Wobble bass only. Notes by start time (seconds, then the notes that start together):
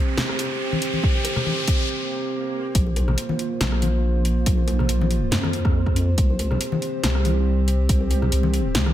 2.75 A#1
3.61 A#1
4.47 A#1
4.89 A#1
5.32 F2
6.18 C2
7.04 C2
7.89 C2
8.32 C2
8.75 C2